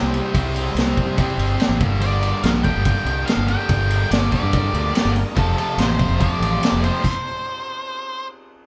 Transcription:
Already playing: C3 G3 C4 E4 C5
0.02 C2
0.14 ride
0.33 C2 C3 G3, kick, ride
0.37 C4
0.56 ride
0.75 C2, snare, ride
0.97 kick, ride
1.06 C3
1.17 C3 G3, kick, ride
1.21 C4
1.38 G1, ride
1.60 snare, ride
1.69 A1
1.79 G1 G2 D3 G3 A#3 D4 A#4, kick, ride
1.83 G3
2.01 D5, ride
2.23 ride
2.43 A#1 F5, snare, ride
2.63 G2 D3 G3 G5, kick, ride
2.76 G1
2.85 kick, ride
3.05 C2, ride
3.26 F5, snare, ride
3.37 G1
3.47 G2 D3 G3 G5, ride
3.69 G1, kick, ride
3.91 ride
4.11 G1 D5, snare, ride
4.30 D3 G3 D5, kick, ride
4.34 G2
4.43 G2
4.53 kick, ride
4.73 D2, ride
4.95 snare, ride
5.05 G1
5.16 ride
5.35 F1 F2 C3 F3 A3 C4 A4, kick, ride
5.39 F3
5.58 A4, ride
5.78 A1 C5, snare, ride
5.99 kick, ride
6.09 F1
6.18 F2 C3 F3 D5, kick, ride
6.40 A1, ride
6.63 snare, ride
6.72 F1
6.84 C5, ride
7.04 kick, crash

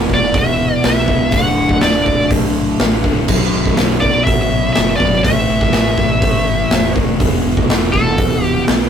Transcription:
Already playing: E2 B2 E3 B3 F#4
0.10 E1, kick, snare
0.14 D5
0.34 D1 E2 B2 E3, kick, open hi-hat
0.38 E5
0.84 B1 E5, snare, open hi-hat
1.06 C#1 E2 B2 E3, kick
1.31 D1 D2 A2 D4 A4 E5 F#5, kick, open hi-hat
1.35 D3
1.57 D1
1.69 kick
1.81 D1 D5, snare, open hi-hat
2.06 D1, kick
2.30 B0 D2 A2 D3, kick, open hi-hat
2.79 A1, snare, open hi-hat
3.04 C#1 D2 A2 D3, kick
3.27 B0 B1 F#2 B3 F#4 C#5, kick, crash
3.31 B2
3.54 B0
3.66 kick, snare
3.77 B0, snare, open hi-hat
4.01 B0 D5, kick
4.24 A1 B1 E5, kick, open hi-hat
4.28 F#2 B2
4.73 E5, snare, open hi-hat
4.78 F#1
4.96 G1 B2 D5, kick
5.02 B1 F#2
5.23 A1 A2 E3 A3 E4 B4 E5, kick, open hi-hat
5.28 A3
5.49 A1
5.61 kick, snare
5.73 A1, snare, open hi-hat
5.98 A1, kick, snare
6.20 G1 A2 E3, kick, open hi-hat
6.24 A3
6.70 E1, snare, open hi-hat
6.96 E1 A2 E3 A3, kick
7.19 E1 E2 B2 E3 B3 F#4, kick, open hi-hat
7.45 E1
7.57 kick
7.68 E1, snare, open hi-hat
7.92 E1 A4, kick, snare
8.17 D1 E2 B2 E3, kick, open hi-hat
8.44 G4
8.68 B1, snare, open hi-hat

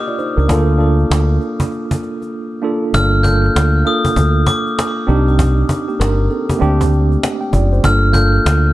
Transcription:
Already playing: A#3 D4 F4 G4 A#4 D#5
0.07 F4 D5, cajon slap
0.18 D#4 C5, cajon slap
0.37 C#2 D4 A#4, cajon slap
0.48 D2 A#3 D4 F4 A4, cajon bass
0.78 A#3 D4 F4 A4, cajon slap
0.99 cajon slap
1.10 D2, cajon slap
1.30 cajon slap
1.41 cajon slap
1.60 cajon bass
1.72 cajon slap
1.91 cajon bass
2.03 cajon slap
2.22 cajon slap
2.62 A#3 D4 F4 A4
2.94 G1 A#3 D4 F4 A4 F6, cajon bass
3.13 cajon slap
3.23 A#3 D4 F4 A4 G6, cajon bass
3.44 cajon slap
3.56 D2, cajon slap
3.75 cajon slap
3.85 A#3 D4 F4 A4 D#6, cajon slap
4.05 cajon bass
4.16 D2, cajon bass, cajon slap
4.46 D6, cajon bass
4.67 cajon slap
4.79 cajon slap
4.97 cajon slap
5.07 C2 C4 D4 D#4 G4, cajon slap
5.28 cajon slap
5.39 cajon bass
5.58 cajon slap
5.69 cajon bass
5.88 A#3 G4, cajon slap
6.00 G1 D4 A#4, cajon slap
6.19 cajon slap
6.30 C4 A4, cajon slap
6.49 A#3 G4, cajon bass
6.59 D2 A3 C4 D4 G4, cajon slap
6.81 cajon bass
6.92 cajon slap
7.11 cajon slap
7.23 cajon slap
7.41 G5, cajon slap
7.53 F#1 F4 D5, cajon bass, cajon slap
7.73 C5, cajon slap
7.83 G1 A#3 D4 F4 A4 F6, cajon bass
8.03 cajon slap
8.12 A#3 D4 F4 A4 G6, cajon bass
8.34 cajon slap
8.45 D2, cajon slap
8.64 cajon slap

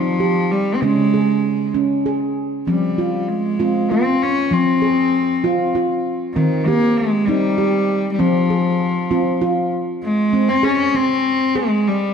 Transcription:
Already playing: F3 C4 D#4
0.20 G4
0.51 G3
0.75 C4
0.82 C#3 G#3 C#4
1.14 G#4
1.74 C#4
2.06 G#4
2.67 F3 G3 C4
2.98 F4
3.28 G#3
3.60 C4 F4
3.91 C4 F4
4.22 C#4
4.51 F3 C4
4.82 G#4
5.44 C4 F4
5.75 F4
6.34 D#3 C4
6.66 A#3 G4
6.97 G#3
7.28 G3 C4 D#4
7.58 G4
8.12 G3
8.19 F3 C4
8.50 G#4
9.11 C4 F4
9.41 F4
10.03 G#3
10.33 C4
10.49 C4
10.63 C#4 G#4
10.95 C4
11.55 G#3 G#4
11.88 G3

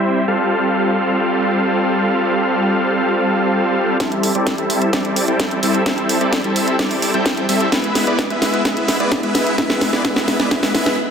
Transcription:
Already playing: G3 C4 E4 C5 E5
0.28 G3 C4 F4 A4 F5
4.00 G3 C4 E4 A4 E5, kick, snare, closed hi-hat
4.12 closed hi-hat
4.23 open hi-hat
4.35 G3 C4 E4 A4 D5, closed hi-hat
4.47 kick, snare, closed hi-hat
4.58 G3 C4 E4 A4 E5, closed hi-hat
4.70 open hi-hat
4.82 closed hi-hat
4.93 G3 C4 E4 A4 D5, kick, snare, closed hi-hat
5.05 closed hi-hat
5.16 open hi-hat
5.28 G3 C4 E4 A4 G5, closed hi-hat
5.40 kick, snare, closed hi-hat
5.51 closed hi-hat
5.63 G3 C4 E4 A4 E5, open hi-hat
5.74 closed hi-hat
5.86 G3 C4 E4 A4 E5, kick, snare, closed hi-hat
5.98 closed hi-hat
6.09 open hi-hat
6.21 G3 C4 E4 A4 D5, closed hi-hat
6.33 kick, snare, closed hi-hat
6.44 G3 C4 E4 A4 E5, closed hi-hat
6.56 open hi-hat
6.68 closed hi-hat
6.79 G3 C4 E4 A4 D5, kick, snare, closed hi-hat
6.91 open hi-hat
7.02 open hi-hat
7.14 G3 C4 E4 A4 G5, closed hi-hat
7.26 kick, snare, closed hi-hat
7.37 closed hi-hat
7.49 G3 C4 E4 A4 E5, open hi-hat
7.61 closed hi-hat
7.72 G#3 B3 E4 B4 E5, kick, snare, closed hi-hat
7.84 closed hi-hat
7.95 snare, open hi-hat
8.07 G#3 B3 E4 B4 D5, closed hi-hat
8.19 kick, snare, closed hi-hat
8.30 G#3 B3 E4 B4 E5, closed hi-hat
8.42 snare, open hi-hat
8.54 closed hi-hat
8.65 G#3 B3 E4 B4 E5, kick, snare, closed hi-hat
8.77 closed hi-hat
8.88 snare, open hi-hat
9.00 G#3 B3 E4 B4 D5, closed hi-hat
9.12 kick, snare, closed hi-hat
9.23 G#3 B3 E4 B4 E5, closed hi-hat
9.35 snare, open hi-hat
9.47 closed hi-hat
9.58 G#3 B3 E4 B4 E5, kick, snare, closed hi-hat
9.70 snare, closed hi-hat
9.81 snare, open hi-hat
9.93 G#3 B3 E4 B4 D5, snare, closed hi-hat
10.05 G#3 B3 E4 B4 E5, kick, snare, closed hi-hat
10.16 snare, closed hi-hat
10.28 snare, open hi-hat
10.39 G#3 B3 E4 B4 D5, snare, closed hi-hat
10.51 G#3 B3 E4 B4 E5, kick, snare, closed hi-hat
10.63 snare, open hi-hat
10.74 G#3 B3 E4 B4 E5, snare, open hi-hat
10.86 snare, closed hi-hat

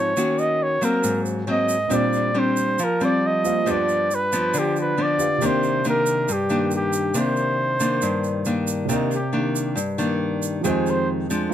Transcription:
Already playing: G#2 F3 C4 D#4 C#5
0.17 D#3 A#3 C#4 F#4, shaker
0.38 D#5, shaker
0.63 C#5
0.81 F#3 A#3 C4 A#4, shaker
1.04 G#2, shaker
1.26 shaker
1.47 F#3 A#3 C4
1.51 D#5
1.69 shaker
1.88 A#2 G3 A#3 C4 D4 F4 G4, shaker
1.92 C5 D5
2.13 shaker
2.34 G3 C4 D4
2.39 C5
2.57 shaker
2.79 F3, shaker
2.84 A#4
3.00 G3 C4 D5, shaker
3.27 D#5
3.43 A#3 F4 G4 C5 F5, shaker
3.64 G2 F3 B3 D4 F4 G4, shaker
3.68 B4 D5
3.89 shaker
4.11 B4, shaker
4.32 F3 B3 D4, shaker
4.54 D3, shaker
4.59 G4
4.76 shaker
4.81 B4
4.98 F3 B3 D4
5.02 D5
5.17 F4 G4 B4 F5, shaker
5.38 C3 D#3 A#3 G4 A#4, shaker
5.42 D4 C5 D5
5.63 shaker
5.84 D#3 A#3 D4, shaker
5.89 A#4
6.06 shaker
6.28 G2 G4, shaker
6.50 D#3 A#3 D4, shaker
6.71 shaker
6.75 G4
6.93 shaker
7.14 C3 D#3 A#3 D4, shaker
7.19 C5
7.36 shaker
7.80 D#3 A#3 D4, shaker
8.02 G2, shaker
8.24 shaker
8.45 D#3 A#3 D4, shaker
8.67 shaker
8.85 C3 D#3 A#3 G4
8.89 D4 A#4 D5, shaker
8.94 D#4
9.11 G4, shaker
9.33 D#3 A#3 D4
9.56 shaker
9.75 G2, shaker
9.98 D#3 A#3 D4, shaker
10.42 shaker
10.61 F2 D#3 F3 G#3 G4 G#4, shaker
10.65 C4 G#4 C5 D#5
10.86 C5, shaker
11.30 F3 G#3 D4, shaker
11.49 A#3 F4

